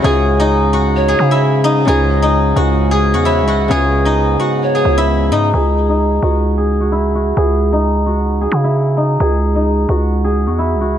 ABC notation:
X:1
M:4/4
L:1/16
Q:1/4=131
K:C#m
V:1 name="Pan flute"
z8 c4 z4 | z2 d2 z8 c2 d2 | z8 c4 z4 | z16 |
z16 | z16 |]
V:2 name="Guzheng"
[Gg]3 [Dd]3 [Ff]3 [Gg]2 [Ee]3 [Dd]2 | [Gg]3 [Dd]3 [Ff]3 [Gg]2 [Ff] [Ee]2 [Ff]2 | [Gg]3 [Dd]3 [Ff]3 [Gg]2 [Ee]3 [Dd]2 | [Gg]3 [Dd]3 [Ff]3 [Gg]2 [Ff] [Ee]2 [Ff]2 |
[Gg]3 [Dd]3 [Ff]3 [Gg]2 [Ee]3 [Dd]2 | [Gg]3 [Dd]3 [Ff]3 [Gg]2 [Ff] [Ee]2 [Ff]2 |]
V:3 name="Harp"
[C,CG]16 | [C,CDG]16 | [C,CG]16 | z16 |
z16 | z16 |]
V:4 name="Harmonium"
C16 | C16 | B,16 | z16 |
z16 | z16 |]
V:5 name="Harmonium" clef=bass
[G,,C,]16 | [G,,C,]16- | [G,,C,]16 | z16 |
z16 | z16 |]
V:6 name="808-style bass" clef=bass
C,,8- C,,2 C,6 | C,,6 C,,4- C,, E,,2- E,,/2 C,,2- C,,/2 | C,,6 z4 C,,4 G,,2 | C,,6 C,,8- C,,2 |
C,,8- C,,2 C,6 | C,,6 C,,4- C,, E,,2- E,,/2 C,,2- C,,/2 |]